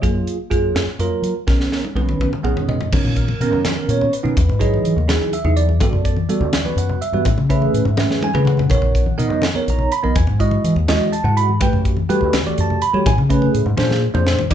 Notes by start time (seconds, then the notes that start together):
0.02 F#2 F#3 A#3 F4 G#4, kick, closed hi-hat
0.27 closed hi-hat
0.50 F#2 F#3 A#3 F4 G#4, kick, closed hi-hat
0.75 F#2, snare, closed hi-hat
0.87 muted fingered electric bass stroke
0.99 F#2 F#3 A#3 F4 A#4, closed hi-hat
1.22 F#3, closed hi-hat
1.47 B1 D#3 B3 C#4 A#4, kick, snare
1.60 snare
1.72 snare
1.85 high tom
1.95 B1 D#3 B3 C#4 B4, high tom
2.09 mid tom
2.19 B1, mid tom
2.31 muted fingered electric bass stroke, mid tom
2.43 B1 D#3 B3 C#4 G#4 F#5, mid tom
2.57 floor tom
2.68 B2 D#5, floor tom
2.81 floor tom
2.92 B2 D#3 B3 C#4 A#4, kick, crash, muted conga, low conga
3.04 A#2, low conga
3.16 A#4, kick, closed hi-hat, low conga
3.28 high conga
3.40 B2 D#3 B3 C#4 A#4, closed hi-hat
3.53 F#2, low conga
3.65 snare, closed hi-hat, muted conga, low conga
3.75 D#3 B3 C#4 A#4
3.88 A#2 C#5, closed hi-hat
4.01 low conga
4.13 B4, closed hi-hat
4.23 B2 D#3 B3 C#4 D#4, high conga, low conga
4.37 E2, kick, closed hi-hat, muted conga, low conga
4.48 G#2, low conga
4.59 F#3 D#4 E4 G#4 D#5, kick, closed hi-hat, low conga
4.74 high conga
4.84 E3, closed hi-hat
4.96 D#2, low conga
5.08 F#3 D#4 E4 G#4, snare, closed hi-hat, muted conga, low conga
5.21 high conga
5.33 E5, closed hi-hat
5.44 E2 F#3 D#4 E4 G#4, low conga
5.57 D5, closed hi-hat
5.69 high conga, low conga
5.80 G2 G3 B3 F#4 A4, kick, closed hi-hat, muted conga, low conga
5.93 F#2, low conga
6.05 D5, kick, closed hi-hat, low conga
6.17 high conga
6.29 G3 B3 F#4 A4, closed hi-hat
6.40 D2, low conga
6.53 snare, closed hi-hat, muted conga, low conga
6.65 G3 B3 F#4 B4, high conga
6.76 F#2 F#5, closed hi-hat
6.89 low conga
7.02 E5, closed hi-hat
7.12 G2 G3 B3 F#4 B4, high conga, low conga
7.25 A2, kick, closed hi-hat, muted conga, low conga
7.36 C#3, low conga
7.50 A3 C#4 G#4 B4 E5, kick, closed hi-hat
7.62 high conga, low conga
7.74 A2, closed hi-hat
7.85 G#2, low conga
7.97 A3 C#4 G#4 B4, snare, muted conga
8.09 snare, high conga
8.21 G#5, high tom, high conga
8.33 C#3 A3 C#4 G#4 B4, mid tom, high conga
8.45 F#5, mid tom, low conga
8.57 floor tom, low conga
8.70 B1 B3 D#4 A#4 C#5, kick, closed hi-hat, muted conga, low conga
8.82 A#1, low conga
8.94 kick, closed hi-hat, low conga
9.06 high conga
9.18 B2 B3 D#4 A#4 D#5, closed hi-hat
9.30 F#2, low conga
9.42 snare, closed hi-hat, muted conga, low conga
9.54 B3 D#4 A#4 C#5, high conga
9.68 A#1 A#5, closed hi-hat
9.78 low conga
9.92 B5, closed hi-hat
10.03 B1 B3 D#4 A#4 D#5, high conga, low conga
10.15 E2 G#5, kick, closed hi-hat, muted conga, low conga
10.27 G#2, low conga
10.40 G#3 E4 F#4 D#5, kick, closed hi-hat
10.51 high conga
10.64 E3, closed hi-hat
10.76 D#2, low conga
10.88 G#3 E4 F#4 D#5, snare, closed hi-hat, muted conga, low conga
11.01 high conga
11.13 A5, closed hi-hat
11.24 G#2 G#3 E4 F#4 F#5, low conga
11.37 B5, closed hi-hat
11.49 high conga, low conga
11.60 G2 A3 F#4 G4 B4 G5, kick, closed hi-hat, muted conga, low conga
11.73 F#2, low conga
11.85 kick, closed hi-hat, low conga
11.97 high conga
12.09 G3 A3 F#4 G4 B4, closed hi-hat
12.21 D2, low conga
12.33 snare, closed hi-hat, muted conga, low conga
12.46 A3 F#4 G4 D5, high conga
12.58 F#2 A5, closed hi-hat
12.70 low conga
12.82 B5, closed hi-hat
12.93 G3 A3 F#4 G4 C#5, high conga, low conga
13.06 A2 G#5, kick, closed hi-hat, muted conga, low conga
13.18 C#3, low conga
13.29 A3 C#4 G#4 B4, kick, closed hi-hat
13.42 high conga
13.54 A2, closed hi-hat, low conga
13.66 G#2, low conga
13.77 A#2 A#3 D4 G#4 C5, snare, muted conga, low conga
13.90 snare, high conga
14.14 F2 A#3 D4 G#4 C5, mid tom, low conga
14.27 snare
14.39 floor tom, high conga
14.50 D#2 G3 D#4 F4 D5, kick, crash, muted conga